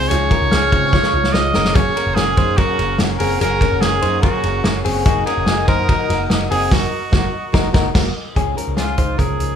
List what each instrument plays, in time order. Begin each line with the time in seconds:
Already playing: clean electric guitar C4, steel-string acoustic guitar F4
0.08 picked electric bass C#2, steel-string acoustic guitar C#3 F3 G#3 D#4 F4, clean electric guitar C#4 G#4, trumpet C#5, hi-hat pedal, ride
0.30 steel-string acoustic guitar G#3 D#4 F4, clean electric guitar C#4 A#4, kick, ride
0.42 picked electric bass C#2
0.51 picked electric bass C#2, steel-string acoustic guitar F3 G#3 D#4 F4, clean electric guitar C#4 G#4, glockenspiel F6, snare, ride
0.71 picked electric bass C#3, steel-string acoustic guitar G#3 D#4 F4, clean electric guitar C4 G#4, glockenspiel C#6, kick, ride
0.91 steel-string acoustic guitar C#3 F3 G#3 D#4 F4, clean electric guitar F4 C#5, glockenspiel C#6, kick, snare
1.03 snare
1.12 picked electric bass C#2, steel-string acoustic guitar G#3 D#4 F4
1.24 snare
1.32 picked electric bass C#2, steel-string acoustic guitar F3 G#3 D#4, trumpet D#5, snare
1.36 steel-string acoustic guitar F4
1.54 picked electric bass F#1, steel-string acoustic guitar A#3 C#4 G#4, clean electric guitar C#4 A#4, snare
1.65 snare
1.74 steel-string acoustic guitar F#3 A#3 C#4 G#4, clean electric guitar C#4 G#4, analog synth pad A#4 F#5 G#5 C#6, trumpet C#5, kick, hi-hat pedal, ride
1.95 steel-string acoustic guitar A#3 C#4 G#4, clean electric guitar C#4 A#4, ride
2.07 picked electric bass F#1
2.15 picked electric bass F#1, steel-string acoustic guitar F#3 A#3 C#4, clean electric guitar C#4 G#4, trumpet G#4, snare, ride
2.19 steel-string acoustic guitar G#4
2.37 picked electric bass F#2, steel-string acoustic guitar A#3 C#4 G#4, clean electric guitar D#4 C5, kick, ride
2.57 steel-string acoustic guitar F#3 A#3 C#4 G#4, clean electric guitar C#4 A#4, trumpet F#4, kick, ride
2.78 picked electric bass F#1, steel-string acoustic guitar A#3 C#4 G#4, ride
2.98 picked electric bass F#1, steel-string acoustic guitar F#3 A#3 C#4 G#4, snare, ride
3.18 picked electric bass F#1, clean electric guitar C4 G#4, steel-string acoustic guitar C#4 G#4, trumpet A#4, open hi-hat, ride
3.23 steel-string acoustic guitar A#3
3.41 picked electric bass F#1, steel-string acoustic guitar F#3 A#3 C#4 G#4, clean electric guitar C#4 G#4, trumpet A#4, hi-hat pedal, ride
3.61 steel-string acoustic guitar A#3 C#4 G#4, clean electric guitar C#4 A#4, kick, ride
3.71 picked electric bass F#1
3.81 picked electric bass F#1, steel-string acoustic guitar F#3 A#3 C#4, clean electric guitar C#4 G#4, trumpet G#4, snare, ride
3.85 steel-string acoustic guitar G#4
4.02 picked electric bass F#2, steel-string acoustic guitar A#3 C#4 G#4, clean electric guitar D#4 C5, ride
4.21 steel-string acoustic guitar F#3 A#3 C#4, clean electric guitar C#4 A#4, trumpet F#4, kick, ride
4.26 steel-string acoustic guitar G#4
4.43 picked electric bass F#1, steel-string acoustic guitar A#3 C#4 G#4, ride
4.64 picked electric bass F#1, steel-string acoustic guitar F#3 A#3 C#4 G#4, snare, ride
4.85 picked electric bass F#1, steel-string acoustic guitar A#3 C#4 G#4, clean electric guitar C4 G#4, open hi-hat, ride
5.05 picked electric bass F#1, steel-string acoustic guitar F#3 A#3 D#4, clean electric guitar D#4 G#4, trumpet F#4, analog synth pad A#4 D#5 D#6, kick, hi-hat pedal, ride
5.09 steel-string acoustic guitar F#4
5.26 steel-string acoustic guitar A#3 D#4 F#4, clean electric guitar C#4 A#4, trumpet G#4, ride
5.37 picked electric bass F#1
5.46 picked electric bass F#1, steel-string acoustic guitar F#3 A#3 D#4 F#4, clean electric guitar D#4 G#4, snare, ride
5.67 picked electric bass F#2, steel-string acoustic guitar A#3 D#4 F#4, clean electric guitar D#4 C5, trumpet A#4, kick, ride
5.88 steel-string acoustic guitar F#3 A#3 D#4 F#4, clean electric guitar D#4 A#4, kick, ride
6.09 picked electric bass F#1, steel-string acoustic guitar A#3 D#4 F#4, snare, ride
6.29 picked electric bass F#1, steel-string acoustic guitar F#3 A#3 D#4 F#4, snare, ride
6.50 picked electric bass F#1, steel-string acoustic guitar A#3 D#4 F#4, clean electric guitar C4 G#4, trumpet G#4, open hi-hat, ride
6.70 picked electric bass F#1, steel-string acoustic guitar F#3 A#3 D#4 F#4, trumpet F#4, kick, snare, crash
7.11 picked electric bass F#1, steel-string acoustic guitar F#3 A#3 D#4 F#4, kick, snare
7.52 picked electric bass F#1, steel-string acoustic guitar F#3 A#3 D#4 F#4, clean electric guitar D#4 A#4, kick, snare
7.73 picked electric bass F#1, steel-string acoustic guitar A#3 D#4 F#4, clean electric guitar D#4 A#4, kick, snare
7.94 picked electric bass F#1, steel-string acoustic guitar F#3 A#3 D#4 F#4, clean electric guitar A#3 F#4, kick, snare, crash
8.35 picked electric bass C#2, steel-string acoustic guitar C#3 F3 G#3 D#4, clean electric guitar C#4 G#4, kick, closed hi-hat
8.55 steel-string acoustic guitar F3 G#3 D#4, clean electric guitar C#4 A#4, closed hi-hat
8.68 picked electric bass C#2
8.76 picked electric bass C#2, steel-string acoustic guitar C#3 F3 G#3 D#4, clean electric guitar C#4 G#4, trumpet F4, snare, closed hi-hat
8.96 picked electric bass C#2, steel-string acoustic guitar F3 G#3 D#4, clean electric guitar D#4 C5, kick, closed hi-hat
9.17 picked electric bass C#2, steel-string acoustic guitar C#3 F3 G#3 D#4, clean electric guitar C#4 A#4, trumpet G#4, kick, closed hi-hat
9.38 picked electric bass C#2, steel-string acoustic guitar F3 G#3 D#4, closed hi-hat